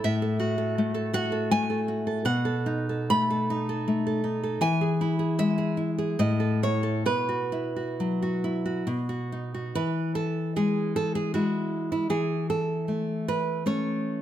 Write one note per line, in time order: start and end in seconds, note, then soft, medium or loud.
0.04 2.22 A2 medium
0.04 1.11 E5 loud
0.22 0.57 A4 medium
0.40 1.12 F#4 medium
0.58 0.93 A4 medium
0.78 1.50 A3 medium
0.94 1.31 A4 medium
1.13 1.87 F#4 medium
1.13 1.50 F#5 loud
1.32 1.69 A4 medium
1.51 2.25 A3 medium
1.51 2.22 G#5 loud
1.70 2.06 A4 medium
1.88 2.25 F#4 medium
2.07 2.25 A4 medium
2.25 4.58 B2 medium
2.25 3.06 F#5 loud
2.45 2.88 A4 medium
2.66 3.49 D#4 medium
2.89 3.29 A4 medium
3.10 3.86 A3 medium
3.10 4.58 B5 loud
3.30 3.68 A4 medium
3.50 4.23 D#4 medium
3.69 4.05 A4 medium
3.88 4.62 A3 medium
4.07 4.42 A4 medium
4.24 4.61 D#4 medium
4.43 4.62 A4 medium
4.61 6.16 E3 medium
4.61 5.35 G#5 loud
4.81 5.18 G#4 medium
5.01 5.76 E4 medium
5.19 5.57 G#4 medium
5.39 6.19 G#3 medium
5.39 6.17 E5 loud
5.58 5.97 G#4 medium
5.77 6.19 E4 medium
5.98 6.20 G#4 medium
6.19 7.04 A2 medium
6.19 6.60 D#5 loud
6.40 6.82 A4 medium
6.63 7.07 E4 medium
6.63 7.05 C#5 loud
6.83 7.06 A4 medium
7.06 8.82 B2 medium
7.06 9.26 B4 loud
7.29 7.75 F#4 medium
7.52 8.43 E4 medium
7.76 8.21 F#4 medium
8.00 8.87 F#3 medium
8.22 8.64 F#4 medium
8.44 8.87 E4 medium
8.66 8.87 F#4 medium
8.87 9.72 B2 medium
9.09 9.53 F#4 medium
9.32 9.75 D#4 medium
9.54 9.75 F#4 medium
9.75 12.08 E3 medium
9.75 10.14 B4 loud
10.15 10.54 A4 medium
10.56 11.33 G#3 medium
10.56 10.94 G#4 medium
10.96 11.15 A4 loud
11.15 11.34 G#4 medium
11.34 12.07 G#3 soft
11.34 11.91 E4 medium
11.34 11.89 F#4 medium
11.92 12.10 E4 medium
12.10 14.22 E3 medium
12.10 12.48 G#4 loud
12.50 13.25 A4 medium
12.88 13.65 A3 soft
13.28 13.65 B4 medium
13.66 14.22 A3 medium
13.66 14.22 C#4 medium
13.66 14.22 C#5 loud